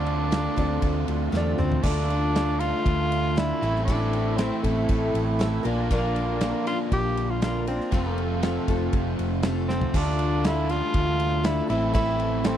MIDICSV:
0, 0, Header, 1, 8, 480
1, 0, Start_track
1, 0, Key_signature, -1, "minor"
1, 0, Tempo, 505051
1, 1762, Time_signature, 4, 2, 24, 8
1, 11948, End_track
2, 0, Start_track
2, 0, Title_t, "Upright piano"
2, 0, Program_c, 0, 0
2, 559, Note_on_c, 0, 74, 90
2, 1259, Note_off_c, 0, 74, 0
2, 1301, Note_on_c, 0, 74, 103
2, 1525, Note_off_c, 0, 74, 0
2, 11948, End_track
3, 0, Start_track
3, 0, Title_t, "Tenor saxophone"
3, 0, Program_c, 1, 66
3, 0, Note_on_c, 1, 62, 100
3, 1280, Note_off_c, 1, 62, 0
3, 1502, Note_on_c, 1, 60, 88
3, 1741, Note_on_c, 1, 62, 107
3, 1755, Note_off_c, 1, 60, 0
3, 2470, Note_on_c, 1, 65, 125
3, 2485, Note_off_c, 1, 62, 0
3, 3213, Note_on_c, 1, 64, 109
3, 3228, Note_off_c, 1, 65, 0
3, 3656, Note_off_c, 1, 64, 0
3, 3662, Note_on_c, 1, 62, 98
3, 4150, Note_on_c, 1, 60, 91
3, 4164, Note_off_c, 1, 62, 0
3, 4393, Note_off_c, 1, 60, 0
3, 4399, Note_on_c, 1, 57, 95
3, 5330, Note_off_c, 1, 57, 0
3, 5620, Note_on_c, 1, 58, 94
3, 6300, Note_off_c, 1, 58, 0
3, 6342, Note_on_c, 1, 65, 106
3, 6448, Note_off_c, 1, 65, 0
3, 6590, Note_on_c, 1, 67, 124
3, 6943, Note_on_c, 1, 65, 104
3, 6958, Note_off_c, 1, 67, 0
3, 7059, Note_off_c, 1, 65, 0
3, 7064, Note_on_c, 1, 65, 99
3, 7283, Note_off_c, 1, 65, 0
3, 7298, Note_on_c, 1, 60, 81
3, 7978, Note_off_c, 1, 60, 0
3, 9205, Note_on_c, 1, 60, 93
3, 9472, Note_on_c, 1, 62, 107
3, 9486, Note_off_c, 1, 60, 0
3, 9948, Note_on_c, 1, 64, 106
3, 9963, Note_off_c, 1, 62, 0
3, 10170, Note_on_c, 1, 65, 125
3, 10184, Note_off_c, 1, 64, 0
3, 10886, Note_on_c, 1, 64, 106
3, 10900, Note_off_c, 1, 65, 0
3, 11111, Note_off_c, 1, 64, 0
3, 11116, Note_on_c, 1, 64, 99
3, 11340, Note_off_c, 1, 64, 0
3, 11352, Note_on_c, 1, 64, 113
3, 11849, Note_on_c, 1, 60, 92
3, 11864, Note_off_c, 1, 64, 0
3, 11948, Note_off_c, 1, 60, 0
3, 11948, End_track
4, 0, Start_track
4, 0, Title_t, "Accordion"
4, 0, Program_c, 2, 21
4, 0, Note_on_c, 2, 60, 84
4, 0, Note_on_c, 2, 62, 83
4, 0, Note_on_c, 2, 65, 78
4, 1709, Note_off_c, 2, 62, 0
4, 1710, Note_off_c, 2, 65, 0
4, 1714, Note_on_c, 2, 57, 79
4, 1724, Note_on_c, 2, 62, 83
4, 1724, Note_on_c, 2, 65, 85
4, 1741, Note_off_c, 2, 60, 0
4, 3409, Note_off_c, 2, 57, 0
4, 3413, Note_off_c, 2, 62, 0
4, 3414, Note_off_c, 2, 65, 0
4, 3444, Note_on_c, 2, 57, 92
4, 3445, Note_on_c, 2, 60, 85
4, 3447, Note_on_c, 2, 64, 95
4, 5353, Note_off_c, 2, 57, 0
4, 5353, Note_off_c, 2, 60, 0
4, 5354, Note_off_c, 2, 64, 0
4, 5379, Note_on_c, 2, 58, 95
4, 5379, Note_on_c, 2, 62, 89
4, 5380, Note_on_c, 2, 65, 85
4, 7508, Note_off_c, 2, 65, 0
4, 7516, Note_off_c, 2, 58, 0
4, 7516, Note_off_c, 2, 62, 0
4, 7519, Note_on_c, 2, 60, 77
4, 7523, Note_on_c, 2, 65, 86
4, 7529, Note_on_c, 2, 57, 85
4, 9423, Note_off_c, 2, 60, 0
4, 9425, Note_off_c, 2, 65, 0
4, 9428, Note_off_c, 2, 57, 0
4, 9442, Note_on_c, 2, 62, 78
4, 9446, Note_on_c, 2, 57, 84
4, 9449, Note_on_c, 2, 65, 83
4, 11092, Note_off_c, 2, 57, 0
4, 11100, Note_off_c, 2, 62, 0
4, 11103, Note_on_c, 2, 60, 95
4, 11104, Note_off_c, 2, 65, 0
4, 11104, Note_on_c, 2, 64, 87
4, 11107, Note_on_c, 2, 57, 87
4, 11948, Note_off_c, 2, 57, 0
4, 11948, Note_off_c, 2, 60, 0
4, 11948, Note_off_c, 2, 64, 0
4, 11948, End_track
5, 0, Start_track
5, 0, Title_t, "Twelve-string acoustic guitar"
5, 0, Program_c, 3, 25
5, 0, Note_on_c, 3, 50, 71
5, 0, Note_on_c, 3, 57, 82
5, 0, Note_on_c, 3, 60, 81
5, 0, Note_on_c, 3, 65, 78
5, 0, Note_on_c, 3, 69, 85
5, 283, Note_off_c, 3, 57, 0
5, 292, Note_off_c, 3, 60, 0
5, 294, Note_on_c, 3, 57, 55
5, 301, Note_off_c, 3, 65, 0
5, 303, Note_on_c, 3, 60, 59
5, 306, Note_off_c, 3, 69, 0
5, 312, Note_off_c, 3, 50, 0
5, 313, Note_on_c, 3, 65, 63
5, 317, Note_on_c, 3, 69, 55
5, 525, Note_off_c, 3, 69, 0
5, 537, Note_on_c, 3, 69, 63
5, 539, Note_off_c, 3, 65, 0
5, 546, Note_off_c, 3, 57, 0
5, 546, Note_off_c, 3, 60, 0
5, 550, Note_on_c, 3, 65, 61
5, 557, Note_on_c, 3, 60, 54
5, 1251, Note_off_c, 3, 60, 0
5, 1257, Note_on_c, 3, 57, 78
5, 1260, Note_off_c, 3, 65, 0
5, 1262, Note_on_c, 3, 60, 71
5, 1270, Note_off_c, 3, 69, 0
5, 1272, Note_on_c, 3, 65, 82
5, 1281, Note_on_c, 3, 69, 81
5, 1492, Note_off_c, 3, 69, 0
5, 1503, Note_on_c, 3, 69, 60
5, 1506, Note_off_c, 3, 65, 0
5, 1509, Note_off_c, 3, 57, 0
5, 1510, Note_off_c, 3, 60, 0
5, 1517, Note_on_c, 3, 65, 58
5, 1521, Note_on_c, 3, 60, 53
5, 1751, Note_on_c, 3, 50, 80
5, 1753, Note_off_c, 3, 69, 0
5, 1755, Note_off_c, 3, 60, 0
5, 1757, Note_off_c, 3, 65, 0
5, 1759, Note_on_c, 3, 62, 79
5, 1760, Note_on_c, 3, 57, 77
5, 1768, Note_on_c, 3, 65, 81
5, 1773, Note_on_c, 3, 69, 95
5, 2235, Note_off_c, 3, 57, 0
5, 2236, Note_off_c, 3, 62, 0
5, 2239, Note_off_c, 3, 50, 0
5, 2239, Note_on_c, 3, 57, 58
5, 2242, Note_off_c, 3, 65, 0
5, 2247, Note_on_c, 3, 62, 64
5, 2253, Note_on_c, 3, 65, 69
5, 2255, Note_off_c, 3, 69, 0
5, 2259, Note_on_c, 3, 69, 61
5, 2456, Note_off_c, 3, 69, 0
5, 2468, Note_on_c, 3, 69, 48
5, 2474, Note_off_c, 3, 65, 0
5, 2482, Note_off_c, 3, 62, 0
5, 2483, Note_off_c, 3, 57, 0
5, 2485, Note_on_c, 3, 65, 53
5, 2493, Note_on_c, 3, 62, 49
5, 3192, Note_on_c, 3, 57, 60
5, 3195, Note_off_c, 3, 62, 0
5, 3196, Note_off_c, 3, 65, 0
5, 3200, Note_off_c, 3, 69, 0
5, 3206, Note_on_c, 3, 62, 70
5, 3208, Note_on_c, 3, 65, 73
5, 3219, Note_on_c, 3, 69, 73
5, 3433, Note_off_c, 3, 69, 0
5, 3441, Note_off_c, 3, 57, 0
5, 3444, Note_on_c, 3, 69, 64
5, 3448, Note_off_c, 3, 62, 0
5, 3449, Note_off_c, 3, 65, 0
5, 3457, Note_on_c, 3, 64, 51
5, 3461, Note_on_c, 3, 60, 50
5, 3465, Note_on_c, 3, 57, 50
5, 3685, Note_off_c, 3, 57, 0
5, 3686, Note_on_c, 3, 45, 85
5, 3687, Note_off_c, 3, 60, 0
5, 3688, Note_off_c, 3, 69, 0
5, 3691, Note_off_c, 3, 64, 0
5, 3693, Note_on_c, 3, 52, 76
5, 3697, Note_on_c, 3, 57, 84
5, 3698, Note_on_c, 3, 60, 89
5, 3703, Note_on_c, 3, 64, 89
5, 3704, Note_on_c, 3, 69, 87
5, 4158, Note_off_c, 3, 57, 0
5, 4166, Note_off_c, 3, 60, 0
5, 4169, Note_on_c, 3, 57, 56
5, 4170, Note_off_c, 3, 45, 0
5, 4173, Note_off_c, 3, 52, 0
5, 4173, Note_off_c, 3, 64, 0
5, 4176, Note_off_c, 3, 69, 0
5, 4177, Note_on_c, 3, 60, 65
5, 4185, Note_on_c, 3, 64, 68
5, 4187, Note_on_c, 3, 69, 63
5, 4401, Note_off_c, 3, 69, 0
5, 4411, Note_off_c, 3, 57, 0
5, 4412, Note_on_c, 3, 69, 61
5, 4415, Note_off_c, 3, 60, 0
5, 4416, Note_off_c, 3, 64, 0
5, 4426, Note_on_c, 3, 60, 47
5, 4427, Note_on_c, 3, 64, 56
5, 4435, Note_on_c, 3, 57, 47
5, 5111, Note_off_c, 3, 57, 0
5, 5117, Note_off_c, 3, 60, 0
5, 5122, Note_on_c, 3, 57, 79
5, 5128, Note_off_c, 3, 64, 0
5, 5128, Note_off_c, 3, 69, 0
5, 5128, Note_on_c, 3, 60, 82
5, 5139, Note_on_c, 3, 64, 92
5, 5139, Note_on_c, 3, 69, 75
5, 5347, Note_off_c, 3, 69, 0
5, 5351, Note_on_c, 3, 70, 69
5, 5360, Note_off_c, 3, 64, 0
5, 5364, Note_on_c, 3, 65, 65
5, 5369, Note_off_c, 3, 57, 0
5, 5370, Note_off_c, 3, 60, 0
5, 5374, Note_on_c, 3, 58, 61
5, 5374, Note_on_c, 3, 62, 61
5, 5603, Note_off_c, 3, 70, 0
5, 5606, Note_off_c, 3, 58, 0
5, 5610, Note_off_c, 3, 65, 0
5, 5612, Note_on_c, 3, 46, 81
5, 5615, Note_off_c, 3, 62, 0
5, 5616, Note_on_c, 3, 53, 87
5, 5617, Note_on_c, 3, 58, 99
5, 5625, Note_on_c, 3, 65, 99
5, 5625, Note_on_c, 3, 70, 88
5, 5627, Note_on_c, 3, 62, 94
5, 6086, Note_off_c, 3, 58, 0
5, 6094, Note_off_c, 3, 46, 0
5, 6094, Note_off_c, 3, 62, 0
5, 6097, Note_on_c, 3, 58, 56
5, 6100, Note_off_c, 3, 70, 0
5, 6104, Note_off_c, 3, 65, 0
5, 6106, Note_on_c, 3, 62, 69
5, 6108, Note_on_c, 3, 65, 69
5, 6114, Note_on_c, 3, 70, 66
5, 6323, Note_off_c, 3, 70, 0
5, 6331, Note_off_c, 3, 65, 0
5, 6335, Note_on_c, 3, 70, 54
5, 6337, Note_off_c, 3, 58, 0
5, 6341, Note_off_c, 3, 62, 0
5, 6342, Note_on_c, 3, 65, 56
5, 6351, Note_on_c, 3, 62, 52
5, 6356, Note_on_c, 3, 58, 47
5, 7050, Note_off_c, 3, 58, 0
5, 7055, Note_off_c, 3, 70, 0
5, 7062, Note_on_c, 3, 58, 59
5, 7063, Note_off_c, 3, 62, 0
5, 7074, Note_off_c, 3, 65, 0
5, 7075, Note_on_c, 3, 62, 64
5, 7077, Note_on_c, 3, 65, 76
5, 7083, Note_on_c, 3, 70, 80
5, 7292, Note_off_c, 3, 70, 0
5, 7297, Note_off_c, 3, 65, 0
5, 7299, Note_off_c, 3, 58, 0
5, 7303, Note_on_c, 3, 70, 58
5, 7305, Note_off_c, 3, 62, 0
5, 7309, Note_on_c, 3, 65, 51
5, 7316, Note_on_c, 3, 62, 54
5, 7326, Note_on_c, 3, 58, 47
5, 7536, Note_off_c, 3, 53, 0
5, 7536, Note_off_c, 3, 65, 0
5, 7537, Note_off_c, 3, 58, 0
5, 7539, Note_off_c, 3, 62, 0
5, 7539, Note_off_c, 3, 70, 0
5, 7539, Note_on_c, 3, 53, 87
5, 7541, Note_on_c, 3, 57, 79
5, 7543, Note_on_c, 3, 60, 82
5, 7547, Note_on_c, 3, 65, 82
5, 7548, Note_on_c, 3, 69, 93
5, 8006, Note_off_c, 3, 60, 0
5, 8008, Note_off_c, 3, 57, 0
5, 8011, Note_on_c, 3, 57, 69
5, 8018, Note_off_c, 3, 65, 0
5, 8018, Note_on_c, 3, 60, 72
5, 8021, Note_on_c, 3, 65, 73
5, 8023, Note_off_c, 3, 69, 0
5, 8027, Note_on_c, 3, 69, 71
5, 8250, Note_off_c, 3, 69, 0
5, 8252, Note_off_c, 3, 57, 0
5, 8256, Note_off_c, 3, 60, 0
5, 8257, Note_off_c, 3, 65, 0
5, 8261, Note_on_c, 3, 69, 63
5, 8271, Note_on_c, 3, 65, 65
5, 8277, Note_on_c, 3, 60, 54
5, 8975, Note_off_c, 3, 60, 0
5, 8979, Note_on_c, 3, 57, 71
5, 8980, Note_off_c, 3, 65, 0
5, 8986, Note_on_c, 3, 60, 74
5, 8993, Note_on_c, 3, 65, 73
5, 8996, Note_off_c, 3, 69, 0
5, 9000, Note_on_c, 3, 69, 90
5, 9210, Note_off_c, 3, 69, 0
5, 9213, Note_off_c, 3, 65, 0
5, 9215, Note_off_c, 3, 57, 0
5, 9218, Note_off_c, 3, 60, 0
5, 9221, Note_on_c, 3, 69, 60
5, 9224, Note_on_c, 3, 65, 56
5, 9241, Note_on_c, 3, 60, 53
5, 9447, Note_off_c, 3, 53, 0
5, 9451, Note_on_c, 3, 50, 78
5, 9455, Note_off_c, 3, 60, 0
5, 9455, Note_off_c, 3, 69, 0
5, 9456, Note_off_c, 3, 65, 0
5, 9459, Note_on_c, 3, 57, 85
5, 9459, Note_on_c, 3, 62, 86
5, 9468, Note_on_c, 3, 65, 93
5, 9468, Note_on_c, 3, 69, 97
5, 9928, Note_off_c, 3, 57, 0
5, 9929, Note_off_c, 3, 50, 0
5, 9932, Note_off_c, 3, 62, 0
5, 9932, Note_on_c, 3, 57, 58
5, 9937, Note_off_c, 3, 65, 0
5, 9946, Note_on_c, 3, 62, 59
5, 9949, Note_on_c, 3, 65, 59
5, 9952, Note_off_c, 3, 69, 0
5, 9956, Note_on_c, 3, 69, 71
5, 10169, Note_off_c, 3, 57, 0
5, 10170, Note_off_c, 3, 69, 0
5, 10176, Note_off_c, 3, 62, 0
5, 10177, Note_off_c, 3, 65, 0
5, 10182, Note_on_c, 3, 69, 55
5, 10188, Note_on_c, 3, 65, 54
5, 10193, Note_on_c, 3, 62, 47
5, 10868, Note_off_c, 3, 62, 0
5, 10871, Note_on_c, 3, 57, 68
5, 10877, Note_off_c, 3, 65, 0
5, 10879, Note_on_c, 3, 62, 75
5, 10880, Note_off_c, 3, 69, 0
5, 10889, Note_on_c, 3, 65, 74
5, 10891, Note_on_c, 3, 69, 71
5, 11115, Note_off_c, 3, 57, 0
5, 11116, Note_off_c, 3, 69, 0
5, 11119, Note_off_c, 3, 62, 0
5, 11124, Note_off_c, 3, 65, 0
5, 11127, Note_on_c, 3, 69, 59
5, 11131, Note_on_c, 3, 64, 54
5, 11140, Note_on_c, 3, 60, 56
5, 11143, Note_on_c, 3, 57, 55
5, 11344, Note_on_c, 3, 45, 84
5, 11345, Note_off_c, 3, 57, 0
5, 11350, Note_off_c, 3, 60, 0
5, 11353, Note_off_c, 3, 69, 0
5, 11354, Note_on_c, 3, 52, 85
5, 11355, Note_off_c, 3, 64, 0
5, 11357, Note_on_c, 3, 57, 91
5, 11362, Note_on_c, 3, 60, 80
5, 11365, Note_on_c, 3, 69, 91
5, 11366, Note_on_c, 3, 64, 99
5, 11818, Note_off_c, 3, 57, 0
5, 11826, Note_off_c, 3, 60, 0
5, 11826, Note_off_c, 3, 64, 0
5, 11828, Note_off_c, 3, 45, 0
5, 11830, Note_on_c, 3, 57, 55
5, 11833, Note_off_c, 3, 52, 0
5, 11836, Note_off_c, 3, 69, 0
5, 11837, Note_on_c, 3, 60, 66
5, 11838, Note_on_c, 3, 64, 71
5, 11847, Note_on_c, 3, 69, 75
5, 11948, Note_off_c, 3, 57, 0
5, 11948, Note_off_c, 3, 60, 0
5, 11948, Note_off_c, 3, 64, 0
5, 11948, Note_off_c, 3, 69, 0
5, 11948, End_track
6, 0, Start_track
6, 0, Title_t, "Overdriven electric guitar"
6, 0, Program_c, 4, 29
6, 0, Note_on_c, 4, 62, 102
6, 1740, Note_off_c, 4, 62, 0
6, 3433, Note_on_c, 4, 45, 92
6, 3438, Note_on_c, 4, 52, 90
6, 5352, Note_off_c, 4, 45, 0
6, 5355, Note_off_c, 4, 52, 0
6, 5366, Note_on_c, 4, 46, 89
6, 5378, Note_on_c, 4, 50, 92
6, 7277, Note_off_c, 4, 46, 0
6, 7283, Note_off_c, 4, 50, 0
6, 7520, Note_on_c, 4, 41, 93
6, 7529, Note_on_c, 4, 48, 107
6, 9428, Note_off_c, 4, 41, 0
6, 9433, Note_off_c, 4, 48, 0
6, 11113, Note_on_c, 4, 45, 96
6, 11125, Note_on_c, 4, 52, 85
6, 11948, Note_off_c, 4, 45, 0
6, 11948, Note_off_c, 4, 52, 0
6, 11948, End_track
7, 0, Start_track
7, 0, Title_t, "Fingered electric bass"
7, 0, Program_c, 5, 33
7, 0, Note_on_c, 5, 38, 88
7, 449, Note_off_c, 5, 38, 0
7, 541, Note_on_c, 5, 38, 82
7, 755, Note_off_c, 5, 38, 0
7, 782, Note_on_c, 5, 38, 105
7, 995, Note_off_c, 5, 38, 0
7, 1026, Note_on_c, 5, 38, 79
7, 1238, Note_off_c, 5, 38, 0
7, 1260, Note_on_c, 5, 40, 81
7, 1486, Note_off_c, 5, 40, 0
7, 1506, Note_on_c, 5, 38, 84
7, 1730, Note_off_c, 5, 38, 0
7, 1746, Note_on_c, 5, 38, 104
7, 2580, Note_off_c, 5, 38, 0
7, 2711, Note_on_c, 5, 38, 91
7, 3338, Note_off_c, 5, 38, 0
7, 3443, Note_on_c, 5, 33, 99
7, 4272, Note_off_c, 5, 33, 0
7, 4407, Note_on_c, 5, 33, 80
7, 4616, Note_off_c, 5, 33, 0
7, 4656, Note_on_c, 5, 33, 108
7, 4861, Note_off_c, 5, 33, 0
7, 4886, Note_on_c, 5, 33, 97
7, 5302, Note_off_c, 5, 33, 0
7, 5369, Note_on_c, 5, 34, 88
7, 6196, Note_off_c, 5, 34, 0
7, 6575, Note_on_c, 5, 34, 99
7, 7398, Note_off_c, 5, 34, 0
7, 7530, Note_on_c, 5, 29, 98
7, 8149, Note_off_c, 5, 29, 0
7, 8251, Note_on_c, 5, 29, 83
7, 8458, Note_off_c, 5, 29, 0
7, 8489, Note_on_c, 5, 29, 107
7, 8696, Note_off_c, 5, 29, 0
7, 8730, Note_on_c, 5, 29, 90
7, 9347, Note_off_c, 5, 29, 0
7, 9447, Note_on_c, 5, 38, 97
7, 10268, Note_off_c, 5, 38, 0
7, 10405, Note_on_c, 5, 38, 104
7, 11019, Note_off_c, 5, 38, 0
7, 11117, Note_on_c, 5, 33, 108
7, 11936, Note_off_c, 5, 33, 0
7, 11948, End_track
8, 0, Start_track
8, 0, Title_t, "Drums"
8, 61, Note_on_c, 9, 51, 59
8, 156, Note_off_c, 9, 51, 0
8, 303, Note_on_c, 9, 51, 97
8, 309, Note_on_c, 9, 38, 110
8, 398, Note_off_c, 9, 51, 0
8, 404, Note_off_c, 9, 38, 0
8, 544, Note_on_c, 9, 36, 80
8, 546, Note_on_c, 9, 51, 70
8, 639, Note_off_c, 9, 36, 0
8, 642, Note_off_c, 9, 51, 0
8, 780, Note_on_c, 9, 51, 113
8, 783, Note_on_c, 9, 36, 115
8, 875, Note_off_c, 9, 51, 0
8, 878, Note_off_c, 9, 36, 0
8, 1025, Note_on_c, 9, 51, 74
8, 1120, Note_off_c, 9, 51, 0
8, 1275, Note_on_c, 9, 38, 64
8, 1370, Note_off_c, 9, 38, 0
8, 1509, Note_on_c, 9, 45, 88
8, 1604, Note_off_c, 9, 45, 0
8, 1631, Note_on_c, 9, 43, 87
8, 1726, Note_off_c, 9, 43, 0
8, 1743, Note_on_c, 9, 49, 127
8, 1745, Note_on_c, 9, 36, 120
8, 1838, Note_off_c, 9, 49, 0
8, 1840, Note_off_c, 9, 36, 0
8, 1999, Note_on_c, 9, 51, 67
8, 2094, Note_off_c, 9, 51, 0
8, 2237, Note_on_c, 9, 51, 89
8, 2244, Note_on_c, 9, 38, 101
8, 2332, Note_off_c, 9, 51, 0
8, 2339, Note_off_c, 9, 38, 0
8, 2475, Note_on_c, 9, 51, 81
8, 2570, Note_off_c, 9, 51, 0
8, 2716, Note_on_c, 9, 36, 115
8, 2718, Note_on_c, 9, 51, 100
8, 2811, Note_off_c, 9, 36, 0
8, 2813, Note_off_c, 9, 51, 0
8, 2962, Note_on_c, 9, 51, 78
8, 3057, Note_off_c, 9, 51, 0
8, 3204, Note_on_c, 9, 51, 88
8, 3211, Note_on_c, 9, 38, 109
8, 3299, Note_off_c, 9, 51, 0
8, 3306, Note_off_c, 9, 38, 0
8, 3449, Note_on_c, 9, 51, 65
8, 3544, Note_off_c, 9, 51, 0
8, 3571, Note_on_c, 9, 38, 35
8, 3666, Note_off_c, 9, 38, 0
8, 3683, Note_on_c, 9, 51, 99
8, 3685, Note_on_c, 9, 36, 116
8, 3778, Note_off_c, 9, 51, 0
8, 3780, Note_off_c, 9, 36, 0
8, 3927, Note_on_c, 9, 51, 69
8, 4022, Note_off_c, 9, 51, 0
8, 4165, Note_on_c, 9, 51, 96
8, 4172, Note_on_c, 9, 38, 102
8, 4260, Note_off_c, 9, 51, 0
8, 4267, Note_off_c, 9, 38, 0
8, 4409, Note_on_c, 9, 36, 82
8, 4412, Note_on_c, 9, 51, 77
8, 4504, Note_off_c, 9, 36, 0
8, 4507, Note_off_c, 9, 51, 0
8, 4644, Note_on_c, 9, 51, 113
8, 4650, Note_on_c, 9, 36, 121
8, 4739, Note_off_c, 9, 51, 0
8, 4745, Note_off_c, 9, 36, 0
8, 4895, Note_on_c, 9, 51, 84
8, 4990, Note_off_c, 9, 51, 0
8, 5136, Note_on_c, 9, 51, 95
8, 5143, Note_on_c, 9, 38, 111
8, 5231, Note_off_c, 9, 51, 0
8, 5238, Note_off_c, 9, 38, 0
8, 5370, Note_on_c, 9, 51, 76
8, 5465, Note_off_c, 9, 51, 0
8, 5612, Note_on_c, 9, 51, 105
8, 5614, Note_on_c, 9, 36, 120
8, 5707, Note_off_c, 9, 51, 0
8, 5709, Note_off_c, 9, 36, 0
8, 5853, Note_on_c, 9, 51, 67
8, 5948, Note_off_c, 9, 51, 0
8, 6089, Note_on_c, 9, 51, 104
8, 6096, Note_on_c, 9, 38, 106
8, 6184, Note_off_c, 9, 51, 0
8, 6191, Note_off_c, 9, 38, 0
8, 6337, Note_on_c, 9, 51, 77
8, 6432, Note_off_c, 9, 51, 0
8, 6573, Note_on_c, 9, 51, 106
8, 6575, Note_on_c, 9, 36, 116
8, 6668, Note_off_c, 9, 51, 0
8, 6670, Note_off_c, 9, 36, 0
8, 6817, Note_on_c, 9, 51, 71
8, 6912, Note_off_c, 9, 51, 0
8, 7049, Note_on_c, 9, 51, 88
8, 7056, Note_on_c, 9, 38, 112
8, 7144, Note_off_c, 9, 51, 0
8, 7151, Note_off_c, 9, 38, 0
8, 7292, Note_on_c, 9, 51, 77
8, 7387, Note_off_c, 9, 51, 0
8, 7419, Note_on_c, 9, 38, 35
8, 7514, Note_off_c, 9, 38, 0
8, 7524, Note_on_c, 9, 51, 93
8, 7531, Note_on_c, 9, 36, 122
8, 7619, Note_off_c, 9, 51, 0
8, 7626, Note_off_c, 9, 36, 0
8, 7772, Note_on_c, 9, 51, 59
8, 7867, Note_off_c, 9, 51, 0
8, 8008, Note_on_c, 9, 51, 93
8, 8015, Note_on_c, 9, 38, 98
8, 8103, Note_off_c, 9, 51, 0
8, 8110, Note_off_c, 9, 38, 0
8, 8249, Note_on_c, 9, 36, 83
8, 8250, Note_on_c, 9, 51, 75
8, 8344, Note_off_c, 9, 36, 0
8, 8345, Note_off_c, 9, 51, 0
8, 8485, Note_on_c, 9, 51, 110
8, 8488, Note_on_c, 9, 36, 114
8, 8580, Note_off_c, 9, 51, 0
8, 8583, Note_off_c, 9, 36, 0
8, 8733, Note_on_c, 9, 51, 79
8, 8828, Note_off_c, 9, 51, 0
8, 8959, Note_on_c, 9, 51, 99
8, 8966, Note_on_c, 9, 38, 117
8, 9054, Note_off_c, 9, 51, 0
8, 9061, Note_off_c, 9, 38, 0
8, 9215, Note_on_c, 9, 38, 66
8, 9310, Note_off_c, 9, 38, 0
8, 9327, Note_on_c, 9, 43, 102
8, 9422, Note_off_c, 9, 43, 0
8, 9446, Note_on_c, 9, 49, 113
8, 9447, Note_on_c, 9, 36, 125
8, 9542, Note_off_c, 9, 36, 0
8, 9542, Note_off_c, 9, 49, 0
8, 9683, Note_on_c, 9, 51, 76
8, 9778, Note_off_c, 9, 51, 0
8, 9925, Note_on_c, 9, 51, 107
8, 9932, Note_on_c, 9, 38, 111
8, 10020, Note_off_c, 9, 51, 0
8, 10027, Note_off_c, 9, 38, 0
8, 10163, Note_on_c, 9, 51, 78
8, 10258, Note_off_c, 9, 51, 0
8, 10396, Note_on_c, 9, 51, 94
8, 10401, Note_on_c, 9, 36, 122
8, 10491, Note_off_c, 9, 51, 0
8, 10496, Note_off_c, 9, 36, 0
8, 10641, Note_on_c, 9, 51, 79
8, 10736, Note_off_c, 9, 51, 0
8, 10875, Note_on_c, 9, 51, 95
8, 10881, Note_on_c, 9, 38, 107
8, 10970, Note_off_c, 9, 51, 0
8, 10976, Note_off_c, 9, 38, 0
8, 11118, Note_on_c, 9, 51, 70
8, 11213, Note_off_c, 9, 51, 0
8, 11354, Note_on_c, 9, 51, 101
8, 11355, Note_on_c, 9, 36, 122
8, 11449, Note_off_c, 9, 51, 0
8, 11450, Note_off_c, 9, 36, 0
8, 11590, Note_on_c, 9, 51, 66
8, 11685, Note_off_c, 9, 51, 0
8, 11826, Note_on_c, 9, 51, 95
8, 11832, Note_on_c, 9, 38, 116
8, 11921, Note_off_c, 9, 51, 0
8, 11927, Note_off_c, 9, 38, 0
8, 11948, End_track
0, 0, End_of_file